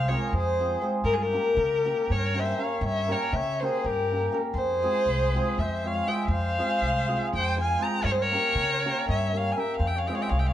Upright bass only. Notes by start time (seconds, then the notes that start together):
Already playing: C2
0.33 F2
1.04 G2
1.57 C#3
2.10 G2
2.81 G2
3.33 C#3
3.84 G2
4.54 F2
5.06 C2
5.58 F2
6.28 F2
6.81 C2
7.33 F2
8.04 G2
8.55 C#3
9.09 G2
9.80 F2
10.31 C2